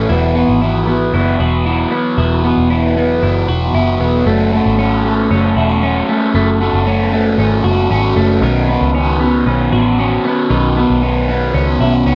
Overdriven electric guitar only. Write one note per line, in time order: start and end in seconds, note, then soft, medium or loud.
0.09 0.35 E3 medium
0.09 0.36 F#3 medium
0.09 0.35 B3 medium
0.09 0.34 F#4 medium
0.35 0.60 F#3 soft
0.35 0.61 B3 medium
0.35 0.61 F#4 medium
0.61 0.87 E3 medium
0.61 0.88 F#3 medium
0.61 0.87 B3 medium
0.61 0.86 F#4 loud
0.87 1.13 F#3 soft
0.87 1.13 B3 medium
0.87 1.13 F#4 medium
1.13 1.39 E3 medium
1.13 1.40 F#3 medium
1.13 1.39 B3 medium
1.13 1.38 F#4 medium
1.39 1.65 F#3 soft
1.39 1.65 B3 medium
1.39 1.66 F#4 medium
1.65 1.92 E3 medium
1.65 1.92 F#3 medium
1.65 1.92 B3 medium
1.65 1.90 F#4 medium
1.91 2.17 F#3 soft
1.91 2.18 B3 medium
1.91 2.18 F#4 medium
2.18 2.44 E3 medium
2.18 2.44 F#3 medium
2.18 2.44 B3 medium
2.18 2.42 F#4 medium
2.43 2.69 F#3 soft
2.43 2.70 B3 medium
2.43 2.70 F#4 medium
2.70 2.96 E3 medium
2.70 2.96 F#3 medium
2.70 2.96 B3 medium
2.70 2.94 F#4 medium
2.96 3.22 F#3 medium
2.96 3.23 B3 medium
2.96 3.22 F#4 medium
3.22 3.48 E3 medium
3.22 3.49 F#3 medium
3.22 3.48 B3 medium
3.22 3.47 F#4 medium
3.48 3.74 F#3 soft
3.48 3.75 B3 soft
3.48 3.74 F#4 medium
3.74 4.01 E3 medium
3.74 4.01 F#3 medium
3.74 4.00 B3 medium
3.74 3.99 F#4 medium
4.00 4.25 F#3 soft
4.00 4.27 B3 soft
4.00 4.26 F#4 medium
4.26 4.52 F#3 medium
4.26 4.53 A3 medium
4.26 4.53 C#4 medium
4.26 4.52 F#4 medium
4.53 4.78 A3 soft
4.53 4.78 C#4 soft
4.53 4.79 F#4 medium
4.78 5.04 F#3 medium
4.78 5.05 A3 medium
4.78 5.05 C#4 medium
4.78 5.03 F#4 medium
5.04 5.30 A3 soft
5.04 5.31 C#4 medium
5.04 5.31 F#4 medium
5.31 5.57 F#3 medium
5.31 5.57 A3 medium
5.31 5.57 C#4 medium
5.31 5.55 F#4 medium
5.57 5.82 A3 soft
5.57 5.83 C#4 medium
5.57 5.83 F#4 medium
5.82 6.09 F#3 medium
5.82 6.09 A3 medium
5.82 6.09 C#4 medium
5.82 6.07 F#4 medium
6.08 6.34 A3 soft
6.08 6.35 C#4 medium
6.08 6.35 F#4 medium
6.34 6.61 F#3 medium
6.34 6.61 A3 medium
6.34 6.61 C#4 medium
6.34 6.59 F#4 medium
6.60 6.85 A3 soft
6.60 6.86 C#4 medium
6.60 6.86 F#4 medium
6.86 7.12 F#3 medium
6.86 7.13 A3 medium
6.86 7.13 C#4 medium
6.86 7.11 F#4 medium
7.12 7.38 A3 medium
7.12 7.39 C#4 medium
7.12 7.39 F#4 medium
7.39 7.65 F#3 medium
7.39 7.65 A3 medium
7.39 7.64 C#4 medium
7.39 7.63 F#4 medium
7.64 7.89 A3 soft
7.64 7.90 C#4 soft
7.64 7.90 F#4 medium
7.90 8.16 F#3 medium
7.90 8.17 A3 medium
7.90 8.16 C#4 medium
7.90 8.15 F#4 medium
8.16 8.43 A3 medium
8.16 8.42 C#4 medium
8.16 8.42 F#4 medium
8.42 8.68 B2 medium
8.42 8.69 D#3 medium
8.42 8.69 B3 medium
8.42 8.68 C#4 medium
8.42 8.67 F#4 medium
8.68 8.94 B3 medium
8.68 8.95 C#4 medium
8.68 8.94 F#4 medium
8.95 9.21 B2 medium
8.95 9.21 D#3 medium
8.95 9.21 B3 loud
8.95 9.21 C#4 medium
8.95 9.19 F#4 loud
9.20 9.46 B3 medium
9.20 9.47 C#4 medium
9.20 9.46 F#4 medium
9.46 9.73 D#3 medium
9.46 9.73 B3 medium
9.46 9.72 C#4 medium
9.46 9.71 F#4 medium
9.72 9.98 B3 soft
9.72 9.98 C#4 medium
9.72 9.98 F#4 soft
9.98 10.24 B2 medium
9.98 10.25 D#3 medium
9.98 10.25 B3 medium
9.98 10.25 C#4 medium
9.98 10.23 F#4 medium
10.25 10.50 B3 medium
10.25 10.51 C#4 medium
10.25 10.51 F#4 medium
10.50 10.76 B2 medium
10.50 10.77 D#3 medium
10.50 10.77 B3 medium
10.50 10.77 C#4 medium
10.50 10.75 F#4 medium
10.77 11.02 B3 soft
10.77 11.02 C#4 medium
10.77 11.03 F#4 medium
11.02 11.28 B2 medium
11.02 11.29 D#3 medium
11.02 11.29 B3 loud
11.02 11.28 C#4 medium
11.02 11.27 F#4 medium
11.28 11.54 B3 soft
11.28 11.55 C#4 medium
11.28 11.54 F#4 medium
11.54 11.80 D#3 medium
11.54 11.81 B3 medium
11.54 11.80 C#4 medium
11.54 11.79 F#4 medium
11.80 12.06 B3 soft
11.80 12.07 C#4 medium
11.80 12.06 F#4 medium
12.06 12.15 B2 medium
12.06 12.15 D#3 medium
12.06 12.15 B3 medium
12.06 12.15 C#4 medium
12.06 12.15 F#4 loud